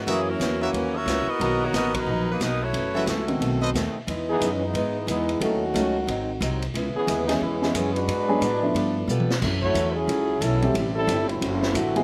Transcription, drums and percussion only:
0.08 ride
0.41 snare, hi-hat pedal, ride
0.74 ride
1.07 snare, hi-hat pedal, ride
1.41 ride
1.74 snare, hi-hat pedal, ride
1.94 kick, ride
2.41 snare, hi-hat pedal, ride
2.74 ride
3.07 snare, hi-hat pedal, ride
3.28 ride
3.42 ride
3.75 snare, hi-hat pedal, ride
4.08 ride
4.41 hi-hat pedal, ride
4.75 ride
5.08 hi-hat pedal, ride
5.29 ride
5.41 ride
5.75 hi-hat pedal, ride
6.08 ride
6.42 hi-hat pedal, ride
6.62 ride
6.75 ride
7.08 hi-hat pedal, ride
7.29 snare, ride
7.62 snare
7.75 hi-hat pedal, ride
7.96 ride
8.09 ride
8.42 hi-hat pedal, ride
8.76 ride
9.09 hi-hat pedal
9.20 high tom
9.30 snare
9.42 kick, snare, crash
9.62 kick
9.75 hi-hat pedal, ride
10.09 ride
10.42 hi-hat pedal, ride
10.62 ride
10.75 ride
11.08 hi-hat pedal, ride
11.29 ride
11.42 ride
11.62 snare
11.75 hi-hat pedal, ride
11.96 ride

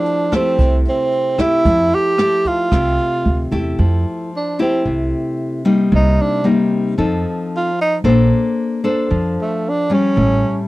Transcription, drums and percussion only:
0.05 closed hi-hat
0.32 kick, cross-stick, closed hi-hat
0.59 kick, closed hi-hat
0.85 closed hi-hat
1.12 closed hi-hat
1.39 kick, cross-stick, closed hi-hat
1.65 kick, closed hi-hat
1.92 closed hi-hat
2.18 cross-stick, closed hi-hat
2.45 kick, closed hi-hat
2.72 kick, cross-stick, closed hi-hat
2.98 closed hi-hat
3.25 closed hi-hat
3.52 kick, closed hi-hat

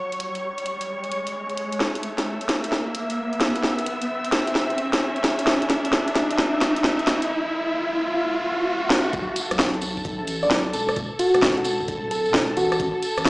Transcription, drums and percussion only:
0.12 closed hi-hat
0.20 closed hi-hat
0.35 closed hi-hat
0.58 closed hi-hat
0.66 closed hi-hat
0.81 closed hi-hat
1.04 closed hi-hat
1.12 closed hi-hat
1.27 closed hi-hat
1.50 closed hi-hat
1.57 closed hi-hat
1.72 closed hi-hat
1.80 snare
1.95 closed hi-hat
2.03 closed hi-hat
2.18 snare, closed hi-hat
2.41 closed hi-hat
2.49 snare, closed hi-hat
2.64 closed hi-hat
2.72 snare
2.95 closed hi-hat
3.10 closed hi-hat
3.33 closed hi-hat
3.41 snare, closed hi-hat
3.56 closed hi-hat
3.63 snare
3.79 closed hi-hat
3.86 closed hi-hat
4.02 closed hi-hat
4.24 closed hi-hat
4.32 snare, closed hi-hat
4.47 closed hi-hat
4.55 snare
4.70 closed hi-hat
4.78 closed hi-hat
4.93 snare, closed hi-hat
5.16 closed hi-hat
5.24 snare, closed hi-hat
5.39 closed hi-hat
5.47 snare
5.62 closed hi-hat
5.70 snare, closed hi-hat
5.85 closed hi-hat
5.93 snare
6.08 closed hi-hat
6.16 snare, closed hi-hat
6.31 closed hi-hat
6.38 snare
6.61 snare, closed hi-hat
6.76 closed hi-hat
6.84 snare
6.99 closed hi-hat
7.07 snare, closed hi-hat
7.22 closed hi-hat
8.90 snare
9.13 kick, closed hi-hat, tambourine
9.36 closed hi-hat, tambourine
9.51 cross-stick, closed hi-hat, tambourine
9.59 kick, snare, closed hi-hat
9.74 closed hi-hat
9.81 closed hi-hat, tambourine
9.97 kick, tambourine
10.05 kick, closed hi-hat, tambourine
10.27 closed hi-hat, tambourine
10.43 tambourine
10.51 kick, snare, closed hi-hat
10.73 closed hi-hat, tambourine
10.89 cross-stick, closed hi-hat, tambourine
10.96 kick, closed hi-hat, tambourine
11.19 closed hi-hat, tambourine
11.34 cross-stick, closed hi-hat, tambourine
11.42 kick, snare, closed hi-hat
11.57 closed hi-hat
11.64 closed hi-hat, tambourine
11.80 kick, tambourine
11.88 kick, closed hi-hat, tambourine
12.11 closed hi-hat, tambourine
12.25 tambourine
12.34 kick, snare, closed hi-hat, tambourine
12.57 closed hi-hat, tambourine
12.72 cross-stick, closed hi-hat, tambourine
12.80 kick, closed hi-hat, tambourine
13.03 closed hi-hat, tambourine
13.18 cross-stick, closed hi-hat, tambourine
13.25 kick, snare, closed hi-hat

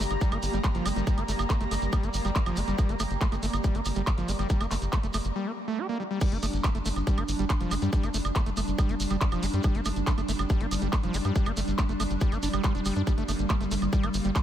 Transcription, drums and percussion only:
0.01 shekere
0.10 closed hi-hat, high woodblock, shekere
0.21 kick, closed hi-hat, shekere
0.32 closed hi-hat, high woodblock, shekere
0.43 open hi-hat, shekere
0.53 closed hi-hat, shekere
0.64 kick, clap, closed hi-hat, high woodblock, shekere
0.75 closed hi-hat, shekere
0.86 open hi-hat, high woodblock, shekere
0.96 closed hi-hat, shekere
1.07 kick, closed hi-hat, shekere
1.18 closed hi-hat, high woodblock, shekere
1.28 open hi-hat, shekere
1.39 closed hi-hat, high woodblock, shekere
1.50 kick, clap, closed hi-hat, shekere
1.61 closed hi-hat, shekere
1.71 open hi-hat, high woodblock, shekere
1.82 closed hi-hat, shekere
1.92 kick, closed hi-hat, high woodblock, shekere
2.03 closed hi-hat, shekere
2.14 open hi-hat, shekere
2.25 closed hi-hat, high woodblock, shekere
2.36 kick, clap, closed hi-hat, shekere
2.46 closed hi-hat, high woodblock, shekere
2.56 open hi-hat, shekere
2.67 closed hi-hat, shekere
2.78 kick, closed hi-hat, high woodblock, shekere
2.89 closed hi-hat, shekere
3.00 open hi-hat, high woodblock, shekere
3.10 closed hi-hat, shekere
3.21 kick, clap, closed hi-hat, shekere
3.32 closed hi-hat, high woodblock, shekere
3.43 open hi-hat, shekere
3.53 closed hi-hat, high woodblock, shekere
3.64 kick, closed hi-hat, shekere
3.75 closed hi-hat, shekere
3.85 open hi-hat, high woodblock, shekere
3.95 closed hi-hat, shekere
4.07 kick, clap, closed hi-hat, high woodblock, shekere
4.18 closed hi-hat, shekere
4.28 open hi-hat, shekere
4.39 closed hi-hat, high woodblock, shekere
4.50 kick, closed hi-hat, shekere
4.61 closed hi-hat, high woodblock, shekere
4.71 clap, open hi-hat, shekere
4.82 closed hi-hat, shekere
4.93 kick, clap, closed hi-hat, high woodblock, shekere
5.03 closed hi-hat, shekere
5.13 open hi-hat, high woodblock, shekere
5.24 closed hi-hat, shekere
6.21 kick, closed hi-hat, crash, shekere
6.32 closed hi-hat, shekere
6.43 open hi-hat, high woodblock, shekere
6.53 closed hi-hat, shekere
6.64 kick, clap, closed hi-hat, high woodblock, shekere
6.75 closed hi-hat, shekere
6.86 open hi-hat, shekere
6.96 closed hi-hat, high woodblock, shekere
7.07 kick, closed hi-hat, shekere
7.17 closed hi-hat, high woodblock, shekere
7.28 open hi-hat, shekere
7.39 closed hi-hat, shekere
7.50 kick, clap, closed hi-hat, high woodblock, shekere
7.60 closed hi-hat, shekere
7.71 open hi-hat, high woodblock, shekere
7.82 closed hi-hat, shekere
7.93 kick, closed hi-hat, shekere
8.03 closed hi-hat, high woodblock, shekere
8.14 open hi-hat, shekere
8.25 closed hi-hat, high woodblock, shekere
8.36 kick, clap, closed hi-hat, shekere
8.46 closed hi-hat, shekere
8.57 open hi-hat, high woodblock, shekere
8.68 closed hi-hat, shekere
8.78 kick, closed hi-hat, high woodblock, shekere
8.89 closed hi-hat, shekere
9.00 open hi-hat, shekere
9.10 closed hi-hat, high woodblock, shekere
9.21 kick, clap, closed hi-hat, shekere
9.32 closed hi-hat, high woodblock, shekere
9.43 open hi-hat, shekere
9.53 closed hi-hat, shekere
9.63 kick, closed hi-hat, high woodblock, shekere
9.75 closed hi-hat, shekere
9.85 open hi-hat, high woodblock, shekere
9.96 closed hi-hat, shekere
10.07 kick, clap, closed hi-hat, shekere
10.18 closed hi-hat, high woodblock, shekere
10.28 open hi-hat, shekere
10.39 closed hi-hat, high woodblock, shekere
10.50 kick, closed hi-hat, shekere
10.60 closed hi-hat, shekere
10.71 open hi-hat, high woodblock, shekere
10.81 closed hi-hat, shekere
10.93 kick, clap, closed hi-hat, high woodblock, shekere
11.03 closed hi-hat, shekere
11.14 open hi-hat, shekere
11.24 closed hi-hat, high woodblock, shekere
11.35 kick, closed hi-hat, shekere
11.46 closed hi-hat, high woodblock, shekere
11.57 open hi-hat, shekere
11.68 closed hi-hat, shekere
11.78 kick, clap, closed hi-hat, high woodblock, shekere
11.89 closed hi-hat, shekere
12.00 open hi-hat, high woodblock, shekere
12.10 closed hi-hat, shekere
12.21 kick, closed hi-hat, shekere
12.32 closed hi-hat, high woodblock, shekere
12.43 open hi-hat, shekere
12.53 closed hi-hat, high woodblock, shekere
12.64 kick, clap, closed hi-hat, shekere
12.75 closed hi-hat, shekere
12.85 open hi-hat, high woodblock, shekere
12.96 closed hi-hat, shekere
13.07 kick, closed hi-hat, shekere
13.18 closed hi-hat, shekere
13.28 open hi-hat, high woodblock, shekere
13.39 closed hi-hat, shekere
13.49 kick, clap, closed hi-hat, high woodblock, shekere
13.61 closed hi-hat, shekere
13.71 open hi-hat, shekere
13.82 closed hi-hat, high woodblock, shekere
13.93 kick, closed hi-hat, shekere
14.03 closed hi-hat, high woodblock, shekere
14.14 open hi-hat, shekere
14.24 closed hi-hat, shekere
14.36 kick, clap, closed hi-hat, high woodblock, shekere

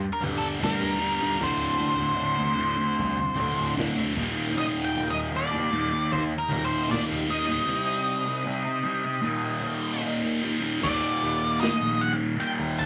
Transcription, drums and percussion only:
0.24 floor tom, mid tom
0.63 kick, snare, mid tom
0.82 floor tom
1.41 kick, floor tom
1.81 floor tom
2.39 floor tom
2.99 kick, floor tom
3.39 floor tom, mid tom
3.78 kick, snare, mid tom
3.98 floor tom
4.17 kick
4.57 floor tom
4.97 floor tom
5.55 floor tom
6.12 kick, floor tom
6.52 floor tom, mid tom
6.91 kick, snare, mid tom
7.11 floor tom
10.84 kick, crash
11.62 snare, closed hi-hat
12.41 closed hi-hat
12.80 kick

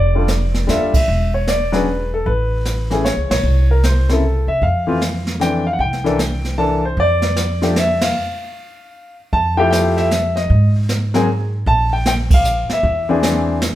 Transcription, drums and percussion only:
0.28 snare, hi-hat pedal
0.54 snare
0.69 snare, hi-hat pedal
0.94 kick, ride
1.08 brush sweep
1.47 snare, hi-hat pedal
1.73 snare
2.26 brush sweep, kick
2.65 snare, hi-hat pedal
2.91 snare
3.05 snare, hi-hat pedal
3.31 snare, ride
3.45 brush sweep
3.84 snare, hi-hat pedal
4.09 snare
4.62 brush sweep, kick
5.01 snare, hi-hat pedal
5.27 snare
5.41 snare, hi-hat pedal
5.79 brush sweep, kick
5.93 snare
6.06 snare
6.19 snare, hi-hat pedal
6.45 snare
6.97 brush sweep, kick
7.22 snare
7.36 snare, hi-hat pedal
7.62 snare
7.76 snare, hi-hat pedal
8.01 snare, ride
9.33 brush sweep, kick
9.72 snare, hi-hat pedal
9.98 snare
10.11 snare, hi-hat pedal
10.37 snare
10.50 brush sweep, kick
10.89 snare, hi-hat pedal
11.14 snare
11.66 brush sweep, kick
12.06 snare, hi-hat pedal
12.30 kick, crash
12.45 hi-hat pedal
12.70 snare
12.83 brush sweep, kick
13.23 snare, hi-hat pedal
13.62 snare, hi-hat pedal

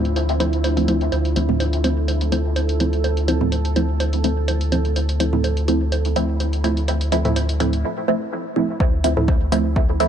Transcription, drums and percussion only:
0.05 closed hi-hat
0.16 closed hi-hat, low bongo
0.29 closed hi-hat
0.40 closed hi-hat, low bongo
0.53 closed hi-hat
0.64 closed hi-hat, low bongo
0.77 closed hi-hat
0.88 closed hi-hat, low bongo
1.01 closed hi-hat
1.12 closed hi-hat, low bongo
1.25 closed hi-hat
1.36 closed hi-hat, low bongo
1.49 mid tom
1.60 closed hi-hat, low bongo
1.73 closed hi-hat
1.84 closed hi-hat, low bongo
2.08 closed hi-hat, low bongo
2.21 closed hi-hat
2.32 closed hi-hat, low bongo
2.56 closed hi-hat, low bongo
2.69 closed hi-hat
2.80 closed hi-hat, low bongo
2.93 closed hi-hat
3.04 closed hi-hat, low bongo
3.17 closed hi-hat
3.28 closed hi-hat, low bongo
3.41 mid tom
3.52 closed hi-hat, low bongo
3.65 closed hi-hat
3.76 closed hi-hat, low bongo
4.00 closed hi-hat, low bongo
4.13 closed hi-hat
4.24 closed hi-hat, low bongo
4.48 closed hi-hat, low bongo
4.61 closed hi-hat
4.72 closed hi-hat, low bongo
4.85 closed hi-hat
4.96 closed hi-hat, low bongo
5.09 closed hi-hat
5.20 closed hi-hat, low bongo
5.33 mid tom
5.44 closed hi-hat, low bongo
5.57 closed hi-hat
5.68 closed hi-hat, low bongo
5.92 closed hi-hat, low bongo
6.05 closed hi-hat
6.16 closed hi-hat, low bongo
6.40 closed hi-hat, low bongo
6.53 closed hi-hat
6.64 closed hi-hat, low bongo
6.77 closed hi-hat
6.88 closed hi-hat, low bongo
7.01 closed hi-hat
7.12 closed hi-hat, low bongo
7.25 closed hi-hat, mid tom
7.36 closed hi-hat, low bongo
7.49 closed hi-hat
7.60 closed hi-hat, mid tom, low bongo
7.73 closed hi-hat
8.80 kick, low bongo
9.04 closed hi-hat, low bongo
9.17 mid tom
9.28 kick, low bongo
9.52 closed hi-hat, low bongo
9.76 kick, low bongo
10.00 closed hi-hat, low bongo

